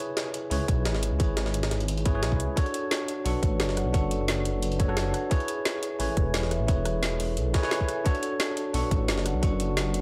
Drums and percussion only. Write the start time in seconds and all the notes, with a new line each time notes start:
0.17 snare, closed hi-hat
0.34 closed hi-hat
0.51 closed hi-hat, open hi-hat
0.68 kick, closed hi-hat
0.85 snare, closed hi-hat
0.95 snare
1.03 closed hi-hat
1.20 kick, closed hi-hat
1.37 snare, closed hi-hat
1.46 snare
1.54 closed hi-hat
1.63 snare, closed hi-hat
1.71 snare, closed hi-hat
1.80 closed hi-hat
1.88 closed hi-hat
1.97 closed hi-hat
2.06 kick, closed hi-hat
2.23 snare, closed hi-hat
2.32 kick
2.40 closed hi-hat
2.57 kick, closed hi-hat
2.66 closed hi-hat
2.74 closed hi-hat
2.91 snare, closed hi-hat
3.08 closed hi-hat
3.26 closed hi-hat, open hi-hat
3.43 kick, closed hi-hat
3.60 snare, closed hi-hat
3.69 snare
3.77 cross-stick, closed hi-hat
3.94 kick, closed hi-hat
4.11 closed hi-hat
4.28 snare, closed hi-hat
4.45 closed hi-hat
4.62 closed hi-hat
4.72 closed hi-hat
4.80 kick, closed hi-hat
4.89 cross-stick
4.97 snare, closed hi-hat
5.14 cross-stick, closed hi-hat
5.31 kick, closed hi-hat
5.40 closed hi-hat
5.48 closed hi-hat
5.65 snare, closed hi-hat
5.83 closed hi-hat
6.00 closed hi-hat, open hi-hat
6.17 kick, closed hi-hat
6.34 snare, closed hi-hat
6.43 snare
6.51 cross-stick, closed hi-hat
6.68 kick, closed hi-hat
6.85 cross-stick, closed hi-hat
7.03 snare, closed hi-hat
7.20 closed hi-hat, open hi-hat
7.37 closed hi-hat
7.54 kick, snare, closed hi-hat
7.63 cross-stick, snare
7.71 snare, closed hi-hat
7.80 kick
7.88 cross-stick, closed hi-hat
8.06 kick, closed hi-hat
8.15 closed hi-hat
8.23 closed hi-hat
8.40 snare, closed hi-hat
8.57 closed hi-hat
8.74 closed hi-hat, open hi-hat
8.91 kick, closed hi-hat
9.08 snare, closed hi-hat
9.18 snare
9.26 cross-stick, closed hi-hat
9.43 kick, closed hi-hat
9.60 closed hi-hat
9.77 snare, closed hi-hat
9.94 closed hi-hat